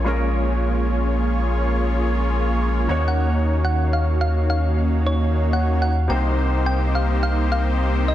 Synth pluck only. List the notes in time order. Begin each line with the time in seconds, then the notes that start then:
3.08 F#5
3.65 F#5
3.93 F5
4.21 F5
4.50 F5
5.07 C#5
5.53 F#5
5.82 F#5
6.10 G5
6.66 G5
6.95 F5
7.23 F5
7.52 F5
8.08 D#5